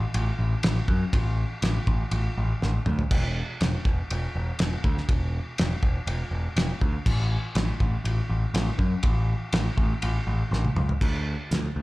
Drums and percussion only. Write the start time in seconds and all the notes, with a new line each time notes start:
0.14 ride bell
0.63 snare, ride bell
0.88 kick
1.13 kick, ride bell
1.62 snare, ride bell
1.87 kick
2.11 ride bell
2.62 snare
2.86 mid tom
2.99 floor tom
3.11 kick, crash
3.61 snare, ride bell
3.85 kick
4.10 ride bell
4.59 snare, ride bell
4.84 kick
4.98 snare
5.09 kick, ride bell
5.58 snare, ride bell
5.83 kick
6.07 ride bell
6.57 snare, ride bell
6.81 kick
7.06 kick, crash
7.55 snare, ride bell
7.80 kick
8.05 ride bell
8.55 snare, ride bell
8.79 kick
9.03 kick, ride bell
9.53 snare, ride bell
9.78 kick
10.02 ride bell
10.53 snare
10.65 high tom
10.76 mid tom
10.89 floor tom
11.01 kick, crash
11.51 snare, closed hi-hat